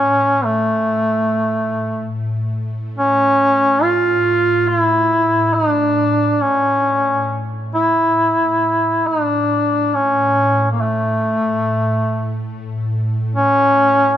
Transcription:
Already playing: A2 C#4
0.45 A3
2.98 C#4
3.83 F4
4.68 E4
5.54 D4
6.41 C#4
7.74 E4
8.14 A2
9.07 D4
9.94 C#4
10.71 A#3
10.82 A3
13.36 C#4

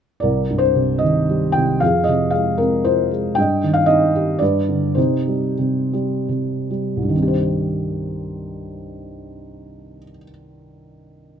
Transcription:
0.20 C2 A#4 D5
0.50 G2
0.58 C5
0.75 C3
0.98 D#5
1.03 D#3
1.29 G3
1.52 G5
1.56 C3
1.80 F2 G#4 F5
2.04 D#5
2.08 C3
2.30 G#3 F5
2.58 C4 A#4
2.84 F4 C5
3.11 G#3
3.35 G2 G5
3.40 D#5
3.63 D#3
3.73 F5
3.86 D#4 D#5
4.16 G4
4.39 G2 B4 D5
4.69 D3
4.95 C3 D#4 C5
5.28 G3
5.59 C3
5.93 G3
6.29 C3
6.71 G3
6.97 C2
7.03 G2
7.09 D#3
7.15 C4
7.22 G4
7.28 C5

